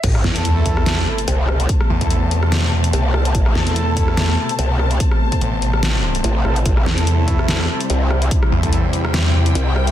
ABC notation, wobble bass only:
X:1
M:4/4
L:1/8
Q:"Swing 16ths" 1/4=145
K:Am
V:1 name="Wobble bass" clef=bass
A,,, z4 z C,,2 | z6 C,,2 | A,,, z4 z C,,2 | z6 A,,, A,,, |
A,,, z4 z C,,2 | z6 C,,2 |]